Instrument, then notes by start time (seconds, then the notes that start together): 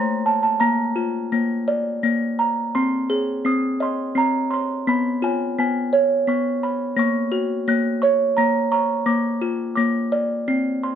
music box
Already playing: A3 C6
0.26 A5
0.43 A5
0.60 A#3 A#5
0.96 F4
1.32 A#3
1.68 D5
2.03 A#3
2.39 A#5
2.75 C4 C6
3.10 G#4
3.45 C4 D#6
3.80 D#5 C6
4.15 C4 A#5
4.51 C6
4.87 B3 B5
5.22 F4 G#5
5.59 B3 G#5
5.93 C#5
6.27 B3 C#6
6.63 B5
6.96 A#3 C#6
7.32 F#4
7.68 A#3 F#6
8.02 C#5 C#6
8.37 A#3 A#5
8.72 A#5 C#6
9.06 A#3 D6
9.42 F4
9.76 A#3 D6
10.12 D5
10.48 C4
10.84 C6